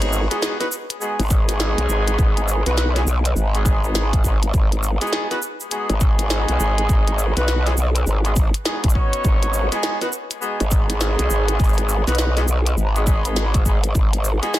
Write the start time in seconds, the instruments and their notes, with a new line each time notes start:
Already playing: wobble bass G#1, horn section G#3 B3 C#4 D#4 F#4 G#4 C#5
0.02 closed hi-hat, shaker
0.13 shaker
0.31 horn section G#3 B3 D#4 F#4 G#4, snare, closed hi-hat, shaker
0.42 snare, shaker
0.60 horn section B3 D#4 F#4 B4, snare, closed hi-hat, shaker
0.72 shaker
0.90 closed hi-hat, shaker
1.01 horn section G#3 B3 D#4 F#4 G#4, shaker
1.19 wobble bass G#1, closed hi-hat, shaker
1.22 shaker
1.25 shaker
1.28 horn section G#3 B3 D#4 F#4 G#4, kick, shaker
1.31 shaker
1.49 snare, closed hi-hat, shaker
1.60 snare, shaker
1.78 wobble bass B1, closed hi-hat, shaker
1.89 wobble bass G#1, shaker
2.08 closed hi-hat, shaker
2.19 wobble bass G#1, kick, shaker
2.37 closed hi-hat, shaker
2.48 shaker
2.66 wobble bass B1, horn section B3 D#4 F#4 B4, snare, closed hi-hat, shaker
2.77 snare, shaker
2.95 horn section G#3 B3 D#4 F#4 G#4, snare, closed hi-hat, shaker
3.06 wobble bass B1, shaker
3.25 closed hi-hat, shaker
3.36 wobble bass G#1, shaker
3.54 horn section G#3 B3 D#4 F#4 G#4, closed hi-hat, shaker
3.65 horn section G#3 B3 D#4 F#4 G#4, kick, shaker
3.84 horn section G#3 B3 D#4 F#4 G#4, shaker
3.95 snare, shaker
4.13 kick, closed hi-hat, shaker
4.24 wobble bass G#1, horn section G#3 B3 D#4 F#4 G#4, kick, shaker
4.43 closed hi-hat, shaker
4.54 wobble bass G#1, kick, shaker
4.72 closed hi-hat, shaker
4.83 shaker
5.01 horn section G#3 B3 D#4 F#4 G#4, snare, closed hi-hat, shaker
5.07 shaker
5.13 snare
5.30 horn section B3 D#4 F#4 B4, snare, closed hi-hat, shaker
5.42 shaker
5.60 shaker
5.71 horn section G#3 B3 D#4 F#4 G#4, closed hi-hat, shaker
5.90 wobble bass G#1, closed hi-hat, shaker
6.00 horn section G#3 B3 D#4 F#4 G#4, kick, shaker
6.19 snare, closed hi-hat, shaker
6.30 snare, shaker
6.49 wobble bass B1, closed hi-hat, shaker
6.60 wobble bass G#1, shaker
6.78 closed hi-hat
6.89 wobble bass G#1, kick, shaker
7.08 closed hi-hat, shaker
7.19 shaker
7.37 wobble bass B1, horn section B3 D#4 F#4 B4, snare, closed hi-hat, shaker
7.48 snare, shaker
7.66 horn section G#3 B3 D#4 F#4 G#4, snare, closed hi-hat, shaker
7.77 wobble bass B1, shaker
7.96 closed hi-hat, shaker
8.07 wobble bass G#1, shaker
8.25 horn section G#3 B3 D#4 F#4 G#4, closed hi-hat, shaker
8.36 kick, shaker
8.54 closed hi-hat, shaker
8.65 horn section G#3 B3 D#4 F#4 G#4, snare, shaker
8.84 wobble bass G#1, kick, closed hi-hat, shaker
8.89 shaker
8.95 horn section B3 C#4 D#4 F#4 C#5, kick
9.13 closed hi-hat, shaker
9.24 wobble bass G#1, kick, shaker
9.43 closed hi-hat, shaker
9.54 shaker
9.72 horn section G#3 B3 D#4 F#4 G#4, snare, closed hi-hat, shaker
9.83 snare, shaker
10.01 horn section B3 D#4 F#4 B4, snare, closed hi-hat, shaker
10.12 shaker
10.31 closed hi-hat, shaker
10.42 horn section G#3 B3 D#4 F#4 G#4, shaker
10.60 wobble bass G#1, closed hi-hat, shaker
10.71 horn section G#3 B3 D#4 F#4 G#4, kick, shaker
10.90 snare, closed hi-hat, shaker
11.01 snare, shaker
11.19 wobble bass B1, closed hi-hat, shaker
11.30 wobble bass G#1, shaker
11.48 closed hi-hat, shaker
11.60 wobble bass G#1, kick, shaker
11.64 shaker
11.69 shaker
11.73 shaker
11.78 closed hi-hat, shaker
11.89 shaker
12.07 wobble bass B1, horn section B3 D#4 F#4 B4, snare, closed hi-hat, shaker
12.15 snare, closed hi-hat, shaker
12.37 horn section G#3 B3 D#4 F#4 G#4, snare, closed hi-hat, shaker
12.48 wobble bass B1, shaker
12.66 closed hi-hat, shaker
12.77 wobble bass G#1, shaker
12.96 horn section G#3 B3 D#4 F#4 G#4, closed hi-hat, shaker
13.07 horn section G#3 B3 D#4 F#4 G#4, kick, shaker
13.25 horn section G#3 B3 D#4 F#4 G#4, closed hi-hat, shaker
13.36 snare, shaker
13.54 kick, closed hi-hat, shaker
13.66 wobble bass G#1, horn section G#3 B3 D#4 F#4 G#4, kick, shaker
13.84 closed hi-hat, shaker
13.95 wobble bass G#1, kick, shaker
14.13 closed hi-hat, shaker
14.24 shaker
14.43 horn section G#3 B3 D#4 F#4 G#4, snare, closed hi-hat, shaker
14.54 snare, shaker